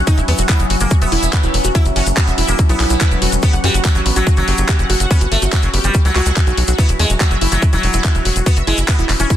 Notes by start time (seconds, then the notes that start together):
Already playing: F#3 C#4
0.07 D#4, kick, closed hi-hat, maracas
0.18 E1 E4, closed hi-hat, maracas
0.28 E2 B3, open hi-hat
0.38 E1 F#4, closed hi-hat, maracas
0.49 B3 E4, kick, clap, closed hi-hat, maracas
0.59 F#1, closed hi-hat, maracas
0.70 F#1 F#4, open hi-hat
0.80 F#1 A#3, closed hi-hat, maracas
0.90 F#4, kick, closed hi-hat, maracas
1.02 E1 B3 E5, closed hi-hat, maracas
1.12 E1 E4, open hi-hat
1.23 E1 E5, closed hi-hat, maracas
1.33 kick, clap, closed hi-hat, maracas
1.43 E1 E4, closed hi-hat, maracas
1.54 E1, open hi-hat
1.64 E1 F#4, closed hi-hat, maracas
1.75 E4, kick, closed hi-hat, maracas
1.85 F#1, closed hi-hat, maracas
1.96 F#1 C#4 F#4, open hi-hat
2.06 F#1, closed hi-hat, maracas
2.17 B3 F#4, kick, clap, closed hi-hat, maracas
2.27 E1 E5, closed hi-hat, maracas
2.38 E1 E4, open hi-hat
2.48 E1 A#3 E5, closed hi-hat, maracas
2.59 kick, closed hi-hat, maracas
2.69 B1 B3 E4, closed hi-hat, maracas
2.80 B1 E4, clap, open hi-hat
2.90 B1 E4, closed hi-hat, maracas
3.01 E4, kick, clap, closed hi-hat, maracas
3.11 E1, closed hi-hat, maracas
3.22 E1 F#4, open hi-hat
3.32 E1, closed hi-hat, maracas
3.42 B3 G4, kick, closed hi-hat, maracas
3.53 F#1 F#5, closed hi-hat, maracas
3.64 F#2 G3 F#4, open hi-hat
3.74 F#1 F#5, closed hi-hat, maracas
3.84 F#3, kick, clap, closed hi-hat, maracas
3.95 A1 F#4, closed hi-hat, maracas
4.06 A1 B3, open hi-hat
4.16 A1 F#3 F#4, closed hi-hat, maracas
4.27 F#4, kick, closed hi-hat, maracas
4.36 F#1 F#3, closed hi-hat, maracas
4.48 F#1 G4, open hi-hat
4.58 F#1, closed hi-hat, maracas
4.69 G4, kick, clap, closed hi-hat, maracas
4.79 F#1 F#5, closed hi-hat, maracas
4.90 F#1 F#4, open hi-hat
5.00 F#1 F#5, closed hi-hat, maracas
5.11 B3 C#4, kick, closed hi-hat, maracas
5.21 G1 F#4, closed hi-hat, maracas
5.32 G1 A3, open hi-hat
5.42 G1 F#4, closed hi-hat, maracas
5.52 F#3 F#4, kick, clap, closed hi-hat, maracas
5.62 F#1, closed hi-hat, maracas
5.74 F#1 B3 G4, open hi-hat
5.84 F#1 G3 B3, closed hi-hat, maracas
5.94 G4, kick, closed hi-hat, maracas
6.05 C#2 F#3 F#5, closed hi-hat, maracas
6.16 C#2 F#4, clap, open hi-hat
6.26 C#2 F#5, closed hi-hat, maracas
6.36 kick, clap, closed hi-hat, maracas
6.47 B1 F#4, closed hi-hat, maracas
6.57 B1, open hi-hat
6.68 B1 F#4, closed hi-hat, maracas
6.78 B3 E4, kick, closed hi-hat, maracas
6.89 E1, closed hi-hat, maracas
6.99 E2 G#3 F#4, open hi-hat
7.10 E1, closed hi-hat, maracas
7.20 F#3 F#4, kick, clap, closed hi-hat, maracas
7.31 F#1 E5, closed hi-hat, maracas
7.41 F#1 E4, open hi-hat
7.52 F#1 F#3 E5, closed hi-hat, maracas
7.62 kick, closed hi-hat, maracas
7.73 E1 F#3 E4, closed hi-hat, maracas
7.83 E1, open hi-hat
7.93 E1 E4, closed hi-hat, maracas
8.04 E4, kick, clap, closed hi-hat, maracas
8.15 E1, closed hi-hat, maracas
8.25 E1 F#4, open hi-hat
8.36 E1, closed hi-hat, maracas
8.46 B3 F#4, kick, closed hi-hat, maracas
8.56 F#1 E5, closed hi-hat, maracas
8.67 F#1 G#3 E4, open hi-hat
8.78 F#1 E5, closed hi-hat, maracas
8.88 B3, kick, clap, closed hi-hat, maracas
8.99 E1 E4, closed hi-hat, maracas
9.09 E1, clap, open hi-hat
9.19 E1 C#4 E4, closed hi-hat, maracas
9.30 E4, kick, closed hi-hat, maracas